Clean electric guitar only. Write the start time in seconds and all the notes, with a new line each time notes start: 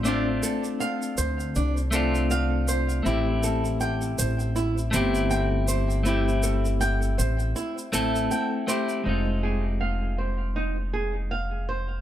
0.03 A3 C4 D4
0.08 F4
1.91 A3 C4 D4
1.96 F4
3.03 A3 C4 E4
3.08 G4
4.91 A3 C4 E4
4.96 G4
6.03 A3 C4 E4
6.09 G4
7.92 A3 C4 E4 A4
8.67 A3 C4 E4 G4
9.04 G#3 C4 D#4
9.09 F4